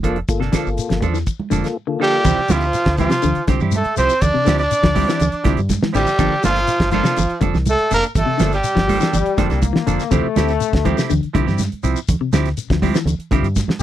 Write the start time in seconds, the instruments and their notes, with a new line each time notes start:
Already playing: fingered electric bass F1
0.03 clean electric guitar F3 A#3 D4 A4, tonewheel organ A#3 F4 A4, kick, closed hi-hat, low conga, shekere
0.16 closed hi-hat
0.28 fingered electric bass G1, tonewheel organ A#3 F4 A4, kick, closed hi-hat, shekere
0.40 clean electric guitar C3 A#3 D4 A4, snare
0.52 clean electric guitar D3 F3 A#3 D4 A4, tonewheel organ A#3 F4 A4, kick, snare, closed hi-hat, high conga, shekere
0.66 fingered electric bass G1, shekere
0.78 closed hi-hat, shekere
0.89 fingered electric bass G1, clean electric guitar F3, snare, closed hi-hat
1.02 fingered electric bass E2, clean electric guitar F3 D4 A4, muted clean electric guitar stroke, kick, closed hi-hat, high conga, low conga, shekere
1.14 clean electric guitar E3, snare, shekere
1.26 kick, closed hi-hat, shekere
1.40 high conga
1.50 fingered electric bass F1, clean electric guitar D3 F3 A#3 D4 A4, closed hi-hat, high conga, shekere
1.64 tonewheel organ A#3 F4 A4, snare, closed hi-hat, shekere
1.87 clean electric guitar D3, tonewheel organ A#3 F4 A4
2.00 clean electric guitar D3 F3 A#3 D4 A4, tenor saxophone G3, trumpet G4
2.24 fingered electric bass D2, clean electric guitar C3 F3 C4 E4 G4, kick, closed hi-hat, high conga, low conga, shekere
2.38 muted fingered electric bass stroke
2.49 fingered electric bass D2, clean electric guitar F3 C4 E4 G4, tenor saxophone F3, trumpet F4, snare, closed hi-hat, high conga, shekere
2.61 closed hi-hat, shekere
2.73 snare, closed hi-hat, high conga, shekere
2.85 fingered electric bass D2, kick, snare, closed hi-hat
2.97 clean electric guitar E3 F3 C4 G4, tenor saxophone F3, trumpet F4, muted clean electric guitar stroke, kick, snare, closed hi-hat, high conga, shekere
3.09 clean electric guitar C3, snare, closed hi-hat, shekere
3.22 fingered electric bass D2, clean electric guitar D3, closed hi-hat, high conga, low conga, shekere
3.35 muted fingered electric bass stroke, closed hi-hat
3.47 fingered electric bass C2, clean electric guitar D3 F3 C4 G4, kick, snare, closed hi-hat, high conga, shekere
3.60 fingered electric bass G2, clean electric guitar C4 E4 G4, low conga, shekere
3.72 tenor saxophone A3, closed hi-hat, high conga, shekere
3.76 trumpet A4
3.84 muted fingered electric bass stroke, closed hi-hat
3.97 fingered electric bass C2, clean electric guitar F3 C4 E4 G4, tenor saxophone C4, trumpet C5, closed hi-hat, shekere
4.09 closed hi-hat, shekere
4.21 fingered electric bass D2, tenor saxophone D4, trumpet D5, kick, closed hi-hat, high conga, low conga, shekere
4.34 clean electric guitar C3
4.45 fingered electric bass D2, clean electric guitar D3 F3 C4 E4 G4, snare, closed hi-hat, high conga, shekere
4.58 trumpet D5, snare, closed hi-hat, shekere
4.63 tenor saxophone D4
4.71 closed hi-hat, high conga, shekere
4.83 fingered electric bass D2, clean electric guitar F3, kick, snare, closed hi-hat
4.94 clean electric guitar F3 G3 C4 E4 G4, kick, open hi-hat, high conga, shekere
5.07 clean electric guitar E3 C4 E4 G4, snare, closed hi-hat, shekere
5.20 fingered electric bass D2, closed hi-hat, high conga, low conga, shekere
5.32 closed hi-hat
5.44 fingered electric bass C2, clean electric guitar D3 F3 C4 E4 G4, kick, snare, closed hi-hat, high conga, shekere
5.57 fingered electric bass G2, closed hi-hat, shekere
5.69 kick, snare, closed hi-hat, high conga, shekere
5.83 clean electric guitar E3, muted fingered electric bass stroke, snare, high conga
5.93 fingered electric bass A1, clean electric guitar D3 F3 C4 E4 G4, tenor saxophone G3, trumpet G4, snare, closed hi-hat, shekere
6.06 snare, closed hi-hat, shekere
6.19 fingered electric bass G1, clean electric guitar D3 F3 A#3 D4 A4, kick, closed hi-hat, high conga, low conga, shekere
6.43 fingered electric bass G1, clean electric guitar F3 A#3 D4 A4, tenor saxophone F3, trumpet F4, snare, closed hi-hat, high conga, shekere
6.56 snare, closed hi-hat, shekere
6.67 snare, closed hi-hat, high conga, shekere
6.79 fingered electric bass G1, kick, snare, closed hi-hat
6.91 clean electric guitar F3 A#3 D4 A4, tenor saxophone F3, trumpet F4, kick, closed hi-hat, high conga, shekere
7.03 clean electric guitar C3 A#3 D4 A4, snare, closed hi-hat, shekere
7.17 fingered electric bass G1, muted clean electric guitar stroke, closed hi-hat, high conga, low conga, shekere
7.29 closed hi-hat
7.41 fingered electric bass F1, clean electric guitar D3 F3 D4 A4, muted clean electric guitar stroke, kick, closed hi-hat, high conga, shekere
7.54 fingered electric bass C2, snare, low conga, shekere
7.66 tenor saxophone A3, closed hi-hat, high conga, shekere
7.70 trumpet A4
7.78 closed hi-hat
7.91 fingered electric bass F1, clean electric guitar A#3 D4 A4, trumpet A#4, closed hi-hat, shekere
7.95 tenor saxophone A#3
8.03 closed hi-hat, shekere
8.15 fingered electric bass G1, tenor saxophone A3, trumpet A4, kick, closed hi-hat, high conga, low conga, shekere
8.26 clean electric guitar C3
8.38 fingered electric bass G1, clean electric guitar D3 F3 A#3 D4 A4, snare, closed hi-hat, high conga, shekere
8.52 tenor saxophone G3, trumpet G4, snare, closed hi-hat, shekere
8.64 closed hi-hat, high conga, shekere
8.75 fingered electric bass G1, clean electric guitar F3, kick, snare, closed hi-hat
8.88 clean electric guitar F3 G3 A#3 D4 A4, kick, open hi-hat, high conga, shekere
9.00 clean electric guitar E3 A#3 D4 A4, snare, closed hi-hat, shekere
9.12 fingered electric bass G1, trombone section G3, closed hi-hat, high conga, low conga, shekere
9.26 closed hi-hat
9.38 fingered electric bass F1, clean electric guitar D3 F3 A#3 D4 A4, kick, snare, closed hi-hat, high conga, shekere
9.50 fingered electric bass C2, clean electric guitar A#3 D4 A4, snare, closed hi-hat, shekere
9.62 trombone section A#3, kick, closed hi-hat, high conga, shekere
9.73 clean electric guitar E3, snare
9.87 fingered electric bass F1, clean electric guitar D3 F3 A#3 D4 A4, closed hi-hat, shekere
9.99 snare, closed hi-hat, shekere
10.10 fingered electric bass D2, clean electric guitar C3 F3 C4 E4 G4, trombone section A3, kick, closed hi-hat, high conga, low conga, shekere
10.36 fingered electric bass D2, clean electric guitar C4 E4 G4, snare, closed hi-hat, high conga, shekere
10.48 snare, closed hi-hat, shekere
10.60 closed hi-hat, high conga, shekere
10.73 fingered electric bass D2, kick, snare, closed hi-hat
10.85 clean electric guitar E3 F3 C4 E4 G4, kick, closed hi-hat, high conga, shekere
10.97 clean electric guitar C3 C4 E4 G4, snare, closed hi-hat, shekere
11.10 fingered electric bass D2, clean electric guitar D3, closed hi-hat, high conga, low conga, shekere
11.23 muted fingered electric bass stroke, closed hi-hat
11.33 fingered electric bass C2, clean electric guitar D3 F3 C4 E4 G4, kick, closed hi-hat, high conga, shekere
11.46 fingered electric bass G2, clean electric guitar C4 E4 G4, snare, low conga, shekere
11.59 snare, closed hi-hat, high conga, shekere
11.72 muted fingered electric bass stroke, closed hi-hat
11.83 fingered electric bass C2, clean electric guitar F3 C4 E4, muted clean electric guitar stroke, closed hi-hat, shekere
11.96 closed hi-hat, shekere
12.08 fingered electric bass D2, kick, closed hi-hat, high conga, low conga, shekere
12.20 clean electric guitar C3, muted fingered electric bass stroke
12.33 fingered electric bass D2, clean electric guitar D3 F3 C4 E4 G4, snare, closed hi-hat, high conga, shekere
12.45 snare, closed hi-hat, shekere
12.57 closed hi-hat, high conga, shekere
12.70 fingered electric bass D2, clean electric guitar F3, kick, snare, closed hi-hat
12.82 clean electric guitar F3 G3 C4 E4 G4, kick, open hi-hat, high conga, shekere
12.94 clean electric guitar E3, snare, closed hi-hat, shekere
13.05 fingered electric bass D2, closed hi-hat, high conga, low conga, shekere
13.19 muted fingered electric bass stroke, closed hi-hat
13.31 fingered electric bass C2, clean electric guitar D3 F3 C4 E4 G4, kick, closed hi-hat, high conga, shekere
13.43 fingered electric bass G2, closed hi-hat, shekere
13.56 kick, snare, closed hi-hat, high conga, shekere
13.68 muted fingered electric bass stroke, muted clean electric guitar stroke, snare, high conga
13.80 shekere